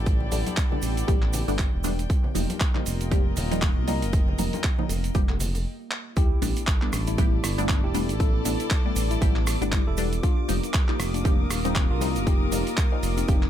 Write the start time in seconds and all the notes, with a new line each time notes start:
Already playing: A1 B3 E4 G4 A4 D5 G5
0.06 kick, closed hi-hat, shaker
0.20 low conga
0.31 A1 G3 A3 B3 D4, open hi-hat, high conga, shaker
0.46 closed hi-hat, high conga, shaker
0.57 kick, clap, closed hi-hat, shaker
0.72 G3 A3 B3 D4, low conga
0.82 A1, open hi-hat, shaker
0.97 closed hi-hat, shaker
1.08 A1 G3 A3 B3 G4, kick, closed hi-hat, shaker
1.22 clap
1.33 open hi-hat, low conga, shaker
1.48 G1 G3 A3 B3 D4, open hi-hat, shaker
1.58 kick, clap, closed hi-hat, shaker
1.74 E1
1.84 G3 A3 B3 D4, open hi-hat, high bongo, high conga, shaker
1.99 closed hi-hat, shaker
2.10 A#3 F4 D#5, kick, closed hi-hat, shaker
2.24 low conga
2.31 F1 F3 G3 A#4
2.35 A#3 D#4, open hi-hat, high conga, shaker
2.50 closed hi-hat, high conga, shaker
2.60 kick, clap, closed hi-hat, shaker
2.75 F3 G3 A#3 D#4, clap, low conga
2.86 F1, open hi-hat, shaker
3.01 D#5, closed hi-hat, shaker
3.11 F3 G3 A#3 G4, kick, closed hi-hat, shaker
3.36 D#1, open hi-hat, low conga, shaker
3.51 F3 G3 A#3 D#4, closed hi-hat, shaker
3.62 kick, clap, closed hi-hat, shaker
3.77 C2
3.87 F3 G3 A#3 D#4, open hi-hat, high conga, shaker
4.02 F1, closed hi-hat, shaker
4.13 kick, closed hi-hat, shaker
4.28 low conga
4.38 F1 F3 G3 A#3 D#4, open hi-hat, high conga, shaker
4.53 closed hi-hat, high conga, shaker
4.63 kick, clap, closed hi-hat, shaker
4.78 F3 G3 A#3 D#4, low conga
4.89 F1, open hi-hat, high bongo, shaker
5.04 closed hi-hat, shaker
5.14 F1 F3 G3 A#3 G4, kick, closed hi-hat, shaker
5.29 clap, high bongo
5.40 F1, open hi-hat, low conga, shaker
5.55 open hi-hat, high bongo, shaker
5.91 clap
6.16 B3 E4 G4 D5 D6, kick, closed hi-hat, sub drop, shaker
6.42 A1 G3 A3 B3 D4, open hi-hat, shaker
6.56 closed hi-hat, shaker
6.61 A4
6.67 kick, clap, closed hi-hat, shaker
6.82 G3 A3 B3 D4, clap
6.91 A1 D5, cross-stick, open hi-hat, shaker
7.07 G3 E4, closed hi-hat, shaker
7.18 G3 A3 B3 G4, kick, closed hi-hat, shaker
7.44 G1, cross-stick, open hi-hat, shaker
7.58 G3 A3 B3 D4, closed hi-hat, shaker
7.69 kick, clap, closed hi-hat, shaker
7.84 E1 E4 G4
7.94 G3 A3 B3 D4, open hi-hat, shaker
8.09 A1, closed hi-hat, shaker
8.20 E4 A4, kick, closed hi-hat, shaker
8.45 A1 G3 A3 B3 D4, open hi-hat, shaker
8.60 closed hi-hat, shaker
8.70 kick, clap, closed hi-hat, shaker
8.85 G3 A3 B3 D4
8.96 A1, open hi-hat, shaker
9.11 G3 E4, closed hi-hat, shaker
9.21 A1 G3 A3 B3 G4, kick, closed hi-hat, shaker
9.36 clap
9.47 cross-stick, open hi-hat, shaker
9.61 G1 G3 A3 B3 D4 E4, closed hi-hat, shaker
9.72 kick, clap, closed hi-hat, shaker
9.87 E1 E4 A4
9.97 G3 A3 B3 D4, open hi-hat, shaker
10.12 closed hi-hat, shaker
10.23 A#3 D4 F4 F5, kick, closed hi-hat, shaker
10.48 F1 F3 G3 A#3 D#4, open hi-hat, shaker
10.52 A#4
10.63 closed hi-hat, shaker
10.73 kick, clap, closed hi-hat, shaker
10.88 F3 G3 A#3 D#4, clap
10.97 F1 D#6, cross-stick, open hi-hat, shaker
11.14 A#3 D4, closed hi-hat, shaker
11.25 F3 G3 A#3 G4, kick, closed hi-hat, shaker
11.51 D#1, cross-stick, open hi-hat, shaker
11.65 D#3 F3 G3 A#3 C4 D#4, closed hi-hat, shaker
11.75 kick, clap, closed hi-hat, shaker
11.91 C2 D4 F4
12.01 F3 G3 A#3 D#4, open hi-hat, shaker
12.16 F1, closed hi-hat, shaker
12.27 D#4 G4, kick, closed hi-hat, shaker
12.52 F1 F3 G3 A#3 D#4, open hi-hat, shaker
12.67 closed hi-hat, shaker
12.77 kick, clap, closed hi-hat, shaker
12.92 F3 G3 A#3 D#4
13.03 F1, open hi-hat, shaker
13.17 C4 D#4, closed hi-hat, shaker
13.28 F1 F3 G3 A#3 G4, kick, closed hi-hat, shaker
13.43 clap